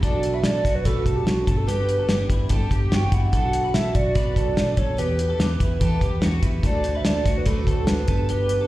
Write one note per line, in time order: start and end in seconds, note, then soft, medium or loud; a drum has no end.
0.02 0.37 B1 loud
0.02 0.44 B2 medium
0.02 0.42 F#3 medium
0.02 0.44 B3 medium
0.02 0.45 D4 medium
0.02 0.45 F#4 medium
0.02 0.32 A4 medium
0.02 0.36 D5 loud
0.02 kick loud
0.02 closed hi-hat medium
0.23 closed hi-hat medium
0.34 0.44 B4 medium
0.34 0.44 E5 loud
0.43 0.60 B1 medium
0.43 0.84 F#3 medium
0.43 0.85 B3 medium
0.43 0.86 D4 medium
0.43 0.86 F#4 medium
0.43 0.65 A4 medium
0.43 0.77 D5 loud
0.43 snare loud
0.43 closed hi-hat medium
0.65 0.82 B1 medium
0.65 0.86 F#4 medium
0.65 kick medium
0.65 snare soft
0.65 closed hi-hat medium
0.75 0.85 B4 medium
0.85 1.02 B1 medium
0.85 1.26 B2 medium
0.85 1.24 F#3 medium
0.85 1.26 B3 medium
0.85 1.27 D4 medium
0.85 1.27 F#4 medium
0.85 1.14 A4 loud
0.85 1.06 B4 medium
0.85 kick medium
0.85 closed hi-hat medium
1.06 1.23 B1 medium
1.06 1.45 A4 medium
1.06 kick medium
1.06 closed hi-hat medium
1.16 1.26 G4 medium
1.25 1.49 B1 medium
1.25 1.47 F#3 medium
1.25 1.47 B3 medium
1.25 1.47 D4 medium
1.25 1.59 F#4 medium
1.25 1.46 F#4 medium
1.25 snare loud
1.25 closed hi-hat medium
1.46 1.98 G1 medium
1.46 1.66 B3 soft
1.46 1.67 D4 soft
1.46 1.67 G4 soft
1.46 1.67 A4 medium
1.46 kick medium
1.46 closed hi-hat medium
1.57 1.69 A4 medium
1.67 2.07 G3 medium
1.67 2.09 B3 medium
1.67 2.10 D4 medium
1.67 1.97 G4 loud
1.67 2.10 G4 medium
1.67 2.50 B4 medium
1.67 closed hi-hat medium
1.89 closed hi-hat medium
1.99 2.09 A4 medium
2.08 2.26 G1 medium
2.08 2.48 G3 medium
2.08 2.50 B3 medium
2.08 2.50 D4 medium
2.08 2.30 G4 medium
2.08 2.50 G4 medium
2.08 snare loud
2.08 closed hi-hat medium
2.29 2.46 G1 medium
2.29 2.50 E4 medium
2.29 kick medium
2.29 closed hi-hat medium
2.49 2.67 G1 medium
2.49 2.89 G3 medium
2.49 2.91 B3 medium
2.49 2.92 D4 medium
2.49 2.92 G4 medium
2.49 2.71 A4 medium
2.49 kick medium
2.49 closed hi-hat medium
2.70 2.88 G1 medium
2.70 2.92 G4 medium
2.70 kick medium
2.70 closed hi-hat medium
2.91 3.08 G1 medium
2.91 3.12 G3 medium
2.91 3.13 B3 medium
2.91 3.11 D4 medium
2.91 3.12 F#4 medium
2.91 3.10 G4 medium
2.91 3.15 G5 loud
2.91 snare loud
2.91 closed hi-hat medium
3.11 3.29 G1 medium
3.11 3.32 B3 soft
3.11 3.33 D4 soft
3.11 3.33 E4 medium
3.11 3.33 G4 soft
3.11 3.34 F#5 medium
3.11 kick medium
3.11 closed hi-hat medium
3.32 3.67 B1 medium
3.32 3.74 B2 medium
3.32 3.73 F#3 medium
3.32 3.75 B3 medium
3.32 3.75 D4 medium
3.32 3.75 F#4 medium
3.32 3.62 A4 medium
3.32 3.72 F#5 loud
3.32 kick medium
3.32 closed hi-hat medium
3.53 closed hi-hat medium
3.64 3.74 B4 medium
3.74 3.91 B1 medium
3.74 4.14 F#3 medium
3.74 4.16 B3 medium
3.74 4.15 D4 medium
3.74 4.16 F#4 medium
3.74 3.95 A4 medium
3.74 3.97 E5 loud
3.74 snare loud
3.74 closed hi-hat medium
3.94 4.12 B1 medium
3.94 4.16 F#4 medium
3.94 4.79 D5 medium
3.94 kick medium
3.94 closed hi-hat medium
4.15 4.32 B1 medium
4.15 4.56 B2 medium
4.15 4.54 F#3 medium
4.15 4.56 B3 medium
4.15 4.57 D4 medium
4.15 4.57 F#4 medium
4.15 4.37 B4 medium
4.15 kick medium
4.15 closed hi-hat medium
4.36 4.53 B1 medium
4.36 4.76 A4 medium
4.36 kick medium
4.36 closed hi-hat medium
4.56 4.74 B1 medium
4.56 4.77 F#3 medium
4.56 4.78 B3 medium
4.56 4.77 D4 medium
4.56 4.75 F#4 medium
4.56 snare loud
4.56 closed hi-hat medium
4.76 4.94 B1 medium
4.76 4.96 B3 soft
4.76 4.98 D4 soft
4.76 4.98 F#4 soft
4.76 4.98 A4 medium
4.76 5.00 C#5 medium
4.76 kick medium
4.76 closed hi-hat medium
4.97 5.32 E2 medium
4.97 5.18 E3 medium
4.97 5.18 B3 medium
4.97 5.19 E4 medium
4.97 5.18 G4 medium
4.97 5.28 G4 loud
4.97 5.39 B4 medium
4.97 5.16 B4 medium
4.97 closed hi-hat medium
5.18 5.38 E4 soft
5.18 5.39 G4 soft
5.18 5.39 B4 soft
5.18 closed hi-hat medium
5.30 5.40 A4 medium
5.38 5.56 E2 medium
5.38 5.80 B3 medium
5.38 5.80 E4 medium
5.38 5.60 G4 medium
5.38 5.81 G4 medium
5.38 6.18 B4 medium
5.38 5.81 B4 medium
5.38 snare loud
5.38 closed hi-hat medium
5.60 5.77 E2 medium
5.60 5.81 E4 medium
5.60 kick medium
5.60 closed hi-hat medium
5.81 5.98 E2 medium
5.81 6.22 E3 medium
5.81 6.20 B3 medium
5.81 6.21 E4 medium
5.81 6.22 G4 medium
5.81 6.02 A4 medium
5.81 6.23 B4 medium
5.81 kick medium
5.81 closed hi-hat medium
6.01 6.18 E2 medium
6.01 6.23 G4 medium
6.01 kick medium
6.01 closed hi-hat medium
6.21 6.39 E2 medium
6.21 6.42 B3 medium
6.21 6.43 E4 medium
6.21 6.43 F#4 medium
6.21 6.43 G4 medium
6.21 6.41 B4 medium
6.21 snare loud
6.21 closed hi-hat medium
6.42 6.60 E2 medium
6.42 6.63 E4 medium
6.42 6.64 E4 soft
6.42 6.64 G4 soft
6.42 6.63 B4 medium
6.42 kick medium
6.42 closed hi-hat medium
6.63 6.97 D2 loud
6.63 6.84 D3 medium
6.63 6.84 F#3 medium
6.63 6.85 A3 medium
6.63 6.84 D4 medium
6.63 6.83 F#4 medium
6.63 6.93 A4 medium
6.63 6.82 C5 medium
6.63 6.98 D5 loud
6.63 kick medium
6.63 closed hi-hat medium
6.83 7.03 A3 soft
6.83 7.04 D4 soft
6.83 7.05 F#4 soft
6.83 7.04 C5 soft
6.83 closed hi-hat medium
6.95 7.04 B4 medium
6.95 7.08 E5 loud
7.04 7.22 D2 medium
7.04 7.46 A3 medium
7.04 7.46 D4 medium
7.04 7.47 F#4 medium
7.04 7.26 A4 medium
7.04 7.47 C5 medium
7.04 7.37 D5 loud
7.04 snare loud
7.04 closed hi-hat medium
7.25 7.42 D2 medium
7.25 7.47 F#4 medium
7.25 kick medium
7.25 snare soft
7.25 closed hi-hat medium
7.38 7.42 B4 medium
7.46 7.63 D2 medium
7.46 7.88 D3 medium
7.46 7.88 F#3 medium
7.46 7.85 A3 medium
7.46 7.86 D4 medium
7.46 7.88 F#4 medium
7.46 7.85 A4 medium
7.46 7.67 B4 medium
7.46 7.89 C5 medium
7.46 kick medium
7.46 closed hi-hat medium
7.66 7.84 D2 medium
7.66 8.06 A4 medium
7.66 kick medium
7.66 closed hi-hat medium
7.87 8.04 D2 medium
7.87 8.08 A3 medium
7.87 8.08 D4 medium
7.87 8.08 F#4 medium
7.87 8.27 B4 medium
7.87 8.07 C5 medium
7.87 snare loud
7.87 closed hi-hat medium
8.07 8.59 G1 medium
8.07 8.50 G3 medium
8.07 8.67 B3 medium
8.07 8.50 D4 medium
8.07 8.50 G4 medium
8.07 8.29 A4 medium
8.07 8.49 B4 medium
8.07 kick medium
8.07 closed hi-hat medium
8.29 8.59 G4 medium
8.29 8.67 B4 loud
8.29 closed hi-hat medium
8.49 8.67 D4 soft
8.49 8.67 G4 soft
8.49 8.67 B4 soft
8.49 closed hi-hat medium
8.61 8.67 A4 medium